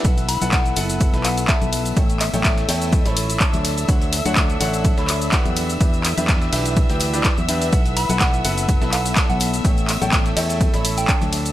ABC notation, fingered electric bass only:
X:1
M:4/4
L:1/16
Q:"Swing 16ths" 1/4=125
K:Amix
V:1 name="Fingered electric bass" clef=bass
B,,,3 B,,,3 F,,,3 B,,,3 z B,,,3 | A,,,3 A,,,3 E,,3 A,,,3 z D,,3 | D,,3 D,,3 A,,,3 D,,3 z E,,3 | E,,3 E,,3 B,,,3 D,,3 z E,,3 |
B,,,3 B,,,3 F,,,3 B,,,3 z B,,,3 | A,,,3 A,,,3 E,,3 A,,,3 z D,,3 |]